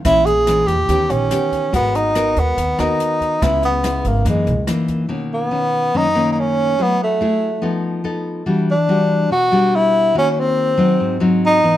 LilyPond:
<<
  \new Staff \with { instrumentName = "Tenor saxophone" } { \time 4/4 \key gis \minor \tempo 4 = 143 e'8 gis'4 g'4 cis'4. | b8 dis'4 b4 dis'4. | e'8 b4 ais8 gis4 r4 | \key e \lydian r8 b4. \tuplet 3/2 { dis'4~ dis'16 dis'16 } cis'4 |
b8 a2 r4. | r8 d'4. fis'4 e'4 | \tuplet 3/2 { cis'8 cis'16 c'8.~ } c'4. r8 dis'4 | }
  \new Staff \with { instrumentName = "Nylon-string guitar" } { \time 4/4 \key gis \minor << { <e gis cis'>8 r8 <e gis cis'>8 r8 <b cis' g'>4 <b cis' g'>4 | <b fis' ais'>4 <b fis' ais'>4 r8 <b fis' ais'>4. | <gis b e'>8 r8 <gis b e'>4 <e ais dis'>8 r8 <e ais dis'>4 | \key e \lydian <dis ais cis'>4 <dis cis'>4 <dis ais cis'>8 <dis ais cis'>4. |
<a e' gis'>4 <a e' gis'>8 r8 <b ees' a'>4 <b ees' a'>4 | <g d' fis'>8 r8 <g d' fis'>4 r8 <g d' fis'>4. | <ais fis'>4. <fis c' dis'>4 <fis bis dis'>4 <e b dis'>8 | } \\ { ais,2 dis2 | gis2 dis2 | cis2 fis,2 | b,2 fis,2 |
fis2 f2 | e2 b,2 | dis2 gis,2 | } >> }
  \new Staff \with { instrumentName = "Upright bass" } { \clef bass \time 4/4 \key gis \minor ais,,4. e,8 dis,8 ais,,8 r4 | gis,,4. dis,8 dis,8 dis,8 r4 | cis,4. gis,,8 fis,8 cis,8 r4 | \key e \lydian r1 |
r1 | r1 | r1 | }
  \new DrumStaff \with { instrumentName = "Drums" } \drummode { \time 4/4 <hh bd ss>8 hh8 <hh ss>8 <hh bd>8 <hh bd>8 hh8 <hh ss>8 <hh bd>8 | <hh bd>8 hh8 <hh ss>8 <hh bd>8 <hh bd>8 <hh ss>8 hh8 <hh bd>8 | <hh bd ss>8 hh8 <hh ss>8 <hh bd>8 <hh bd>8 hh8 <hh ss>8 <hh bd>8 | r4 r4 r4 r4 |
r4 r4 r4 r4 | r4 r4 r4 r4 | r4 r4 r4 r4 | }
>>